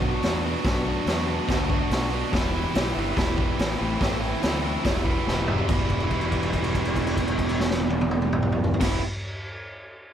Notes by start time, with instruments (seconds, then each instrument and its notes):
Already playing: fingered electric bass B1, overdriven electric guitar B2 F#3
0.02 overdriven electric guitar B3 D4 F#4, kick
0.23 fingered electric bass E2, snare, open hi-hat
0.44 overdriven electric guitar B3 D4 F#4
0.64 fingered electric bass B1, overdriven electric guitar B2 F#3 B3 D4 F#4, kick, snare, open hi-hat
0.84 overdriven electric guitar B3 D4 F#4
1.05 fingered electric bass E2, overdriven electric guitar F#3 B3 D4 F#4, snare, open hi-hat
1.27 overdriven electric guitar B3 D4 F#4
1.46 fingered electric bass D2, overdriven electric guitar B2 F#3 B3 D4 F#4, kick, snare, open hi-hat
1.68 overdriven electric guitar B3 D4 F#4, kick
1.90 fingered electric bass B1, snare, open hi-hat
2.09 overdriven electric guitar B3 D4 F#4
2.31 fingered electric bass E1, overdriven electric guitar E2 B2 E3 G3 B3 E4, kick, snare, open hi-hat
2.52 overdriven electric guitar E3 G3 B3 E4
2.74 fingered electric bass B1, overdriven electric guitar E3 G3 B3 E4, snare, open hi-hat
2.94 fingered electric bass G1, overdriven electric guitar E3 G3 B3 E4
3.16 fingered electric bass E1, overdriven electric guitar E2 B2 E3 G3 B3 E4, kick, snare, open hi-hat
3.37 overdriven electric guitar E3 G3 B3 E4, kick
3.59 fingered electric bass A1, snare, open hi-hat
3.78 fingered electric bass A1, overdriven electric guitar A2 E3 A3 C4 E4
4.00 fingered electric bass A1, overdriven electric guitar A2 E3 A3 C4 E4, kick, snare, open hi-hat
4.21 overdriven electric guitar A3 C4 E4
4.41 fingered electric bass D2, overdriven electric guitar E3 A3 C4 E4, snare, open hi-hat
4.63 overdriven electric guitar A3 C4 E4
4.84 fingered electric bass E1, overdriven electric guitar E2 B2 E3 G3 B3 E4, kick, snare, open hi-hat
5.05 overdriven electric guitar E3 G3 B3 E4, kick
5.27 fingered electric bass E1, snare
5.48 overdriven electric guitar E3 G3 B3 E4, mid tom
5.58 floor tom
5.68 fingered electric bass E1, overdriven electric guitar E2 B2 E3, kick, crash
5.72 overdriven electric guitar G3 B3 E4
5.90 kick, crash
6.00 crash
6.11 kick, crash
6.21 crash
6.32 kick, crash
6.43 crash
6.53 kick, crash
6.64 crash
6.75 kick, crash
6.85 crash
6.96 kick, crash
7.07 crash
7.17 kick, crash
7.27 crash
7.38 kick, crash
7.49 crash
7.60 snare
7.70 snare
7.79 high tom
7.90 high tom
8.01 high tom
8.11 mid tom
8.22 mid tom
8.33 mid tom
8.43 mid tom
8.52 mid tom
8.64 floor tom
8.74 floor tom
8.80 fingered electric bass E1, overdriven electric guitar E2 B2 E3 G3 B3, kick, snare, crash
8.84 overdriven electric guitar E4